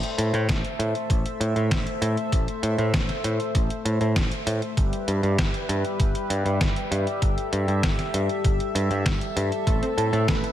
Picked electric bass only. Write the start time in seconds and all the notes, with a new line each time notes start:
0.18 A2
0.34 A2
0.49 A1
0.79 A2
1.10 A1
1.40 A2
1.56 A2
1.71 A1
2.02 A2
2.32 A1
2.63 A2
2.78 A2
2.94 A1
3.24 A2
3.55 A1
3.85 A2
4.01 A2
4.16 A1
4.47 A2
4.77 G1
5.08 G2
5.23 G2
5.38 G1
5.69 G2
6.00 G1
6.30 G2
6.45 G2
6.61 G1
6.91 G2
7.22 G1
7.53 G2
7.68 G2
7.83 G1
8.14 G2
8.45 G1
8.75 G2
8.91 G2
9.06 G1
9.37 G2
9.67 A1
9.98 A2
10.13 A2
10.28 A1